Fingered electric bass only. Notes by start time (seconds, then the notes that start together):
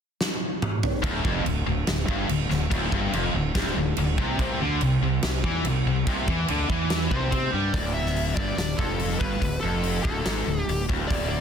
1.03 D1
1.25 F1
1.46 D1
1.67 D1
1.88 D1
2.08 G1
2.29 D1
2.51 D1
2.71 D1
2.92 G1
3.13 F1
3.34 D1
3.55 D1
3.76 D1
3.97 D1
4.18 C2
4.39 C2
4.60 D2
4.81 C2
5.01 C2
5.23 C2
5.44 E2
5.65 C2
5.86 C2
6.07 C2
6.28 E2
6.49 D2
6.69 E2
7.11 C2
7.32 C3
7.53 G2
7.74 D1
8.37 G1
8.58 D1
8.79 F1
9.21 G1
9.41 D1
9.63 F1
10.05 D1
10.26 G#1
10.47 D1
10.67 D1
10.89 D1
11.10 D1